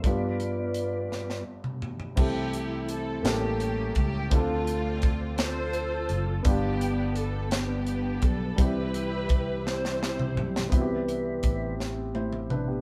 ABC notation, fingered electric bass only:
X:1
M:6/8
L:1/8
Q:3/8=56
K:C
V:1 name="Fingered electric bass" clef=bass
z6 | C,,3 A,,,2 ^C,, | D,,4- D,, ^F,,, | G,,,4- G,,, B,,, |
C,,4- C,, B,,, | C,,2 A,,,4 |]